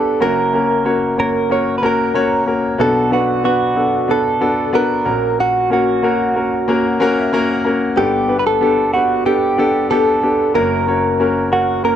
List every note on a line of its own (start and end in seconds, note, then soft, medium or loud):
0.00 0.17 G1 medium
0.00 0.17 G2 medium
0.00 0.23 B3 medium
0.00 0.23 D4 medium
0.00 0.23 G4 medium
0.00 0.22 A4 medium
0.00 0.23 A4 medium
0.00 0.18 B4 medium
0.20 2.75 F#1 medium
0.20 2.75 F#2 medium
0.20 0.50 A#3 medium
0.20 0.51 C#4 medium
0.20 0.51 F#4 medium
0.20 0.51 A#4 medium
0.20 1.19 A#4 medium
0.53 0.83 A#3 medium
0.53 0.83 C#4 medium
0.53 0.84 F#4 medium
0.53 0.84 A#4 medium
0.84 1.15 A#3 medium
0.84 1.15 C#4 medium
0.84 1.15 F#4 medium
0.84 1.15 C#5 medium
1.17 1.47 A#3 medium
1.17 1.47 C#4 soft
1.17 1.48 F#4 medium
1.17 1.52 A#4 medium
1.17 1.48 C#5 medium
1.50 1.80 A#3 medium
1.50 1.80 C#4 medium
1.50 1.80 F#4 medium
1.50 1.80 A#4 medium
1.50 1.78 C#5 medium
1.78 2.12 A#3 medium
1.78 1.83 B4 medium
1.83 2.12 C#4 medium
1.83 2.12 F#4 medium
1.83 2.12 A#4 medium
1.83 2.45 A#4 medium
2.14 2.44 A#3 medium
2.14 2.44 C#4 medium
2.14 2.45 F#4 medium
2.14 2.45 C#5 medium
2.46 2.76 A#3 medium
2.46 2.77 C#4 medium
2.46 2.77 F#4 medium
2.46 2.77 A#4 medium
2.78 5.01 B1 medium
2.78 5.01 B2 soft
2.78 3.09 B3 medium
2.78 3.09 D4 medium
2.78 3.09 F#4 medium
2.78 3.10 A4 medium
3.11 3.41 B3 medium
3.11 3.41 D4 medium
3.11 3.41 F#4 medium
3.11 3.44 F#4 medium
3.11 3.42 B4 medium
3.43 3.74 B3 medium
3.43 3.74 D4 medium
3.43 3.74 F#4 medium
3.43 4.11 F#4 medium
3.43 3.74 B4 medium
3.76 4.06 B3 medium
3.76 4.06 D4 medium
3.76 4.06 F#4 medium
3.76 4.06 A4 medium
4.08 4.38 B3 medium
4.08 4.38 D4 medium
4.08 4.38 F#4 medium
4.08 4.70 A4 medium
4.08 4.39 B4 medium
4.41 4.71 B3 medium
4.41 4.71 D4 medium
4.41 4.71 F#4 medium
4.41 4.71 A4 medium
4.73 5.03 B3 medium
4.73 5.03 D4 medium
4.73 5.03 F#4 medium
4.73 5.40 A#4 medium
4.73 5.03 B4 medium
5.05 7.60 A#1 medium
5.05 7.60 A#2 soft
5.05 5.65 A#3 medium
5.05 5.65 C#4 medium
5.05 5.65 F#4 medium
5.05 5.65 A#4 medium
5.40 5.69 F#4 medium
5.70 6.00 A#3 medium
5.70 6.00 C#4 medium
5.70 6.00 F#4 medium
5.70 6.97 F#4 medium
5.70 6.01 A#4 medium
6.03 6.32 A#3 medium
6.03 6.33 C#4 medium
6.03 6.33 F#4 medium
6.03 6.33 A#4 medium
6.35 6.65 A#3 medium
6.35 6.65 C#4 soft
6.35 6.65 F#4 medium
6.35 6.65 A#4 medium
6.68 6.97 A#3 medium
6.68 6.98 C#4 medium
6.68 6.98 F#4 medium
6.68 6.98 A#4 medium
7.00 7.29 A#3 loud
7.00 7.30 C#4 medium
7.00 7.30 F#4 medium
7.00 7.30 A#4 loud
7.00 7.17 C#5 medium
7.19 7.32 E5 medium
7.33 7.62 A#3 medium
7.33 7.62 C#4 medium
7.33 7.62 F#4 medium
7.33 7.63 A#4 loud
7.33 7.50 F#5 medium
7.52 7.64 F#5 medium
7.65 7.94 A#3 medium
7.65 7.94 C#4 medium
7.65 7.95 F#4 medium
7.65 7.95 A#4 medium
7.65 7.95 A#5 medium
7.96 10.51 G1 medium
7.96 10.51 G2 medium
7.96 8.26 B3 medium
7.96 8.26 D4 medium
7.96 8.26 G4 medium
7.96 8.39 G4 medium
7.96 8.27 A4 medium
8.28 8.58 B3 medium
8.28 8.58 D4 medium
8.28 8.59 G4 medium
8.28 8.59 B4 medium
8.39 8.46 B4 medium
8.47 8.93 A4 medium
8.61 8.91 B3 medium
8.61 8.91 D4 medium
8.61 8.91 G4 medium
8.61 8.92 A4 medium
8.94 9.23 B3 medium
8.94 9.23 D4 soft
8.94 9.26 F#4 medium
8.94 9.24 G4 medium
8.94 9.24 B4 medium
9.25 9.55 B3 medium
9.25 9.55 D4 medium
9.25 9.87 G4 medium
9.25 9.56 G4 medium
9.25 9.56 A4 medium
9.58 9.88 B3 medium
9.58 9.88 D4 medium
9.58 9.88 G4 medium
9.58 9.88 A4 loud
9.91 10.20 B3 medium
9.91 10.20 D4 medium
9.91 10.21 G4 medium
9.91 10.55 A4 medium
9.91 10.21 A4 medium
10.22 10.52 B3 medium
10.22 10.53 D4 medium
10.22 10.53 G4 medium
10.22 10.53 A4 medium
10.54 11.96 F#1 medium
10.54 11.96 F#2 soft
10.54 10.84 A#3 medium
10.54 10.85 C#4 medium
10.54 10.85 F#4 medium
10.54 11.52 A#4 medium
10.54 10.85 A#4 medium
10.87 11.17 A#3 medium
10.87 11.17 C#4 medium
10.87 11.17 F#4 medium
10.87 11.17 C#5 medium
11.20 11.49 A#3 medium
11.20 11.49 C#4 medium
11.20 11.50 F#4 medium
11.20 11.50 A#4 medium
11.51 11.81 A#3 medium
11.51 11.81 C#4 medium
11.51 11.81 F#4 medium
11.51 11.84 F#4 medium
11.51 11.82 A#4 medium
11.84 11.96 A#3 medium
11.84 11.96 C#4 medium
11.84 11.96 F#4 medium
11.84 11.96 A#4 medium
11.84 11.93 A#4 medium